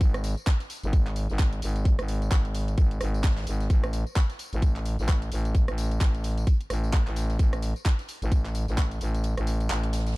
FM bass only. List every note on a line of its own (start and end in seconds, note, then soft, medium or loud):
0.01 0.35 G#1 loud
0.83 1.28 G#1 loud
1.30 1.61 G#1 loud
1.62 1.97 G#1 loud
1.99 2.30 G#1 loud
2.31 2.76 G#1 medium
2.78 2.99 G#1 loud
3.01 3.45 G#1 loud
3.47 3.69 G#1 medium
3.70 4.04 A1 loud
4.53 4.97 A1 loud
4.99 5.30 A1 loud
5.32 5.66 A1 loud
5.68 5.99 A1 loud
6.01 6.45 A1 loud
6.70 7.04 A1 loud
7.07 7.38 A1 loud
7.39 7.74 A1 loud
8.22 8.66 A1 loud
8.68 8.99 A1 loud
9.01 9.35 A1 loud
9.37 9.69 A1 loud
9.70 10.15 A1 medium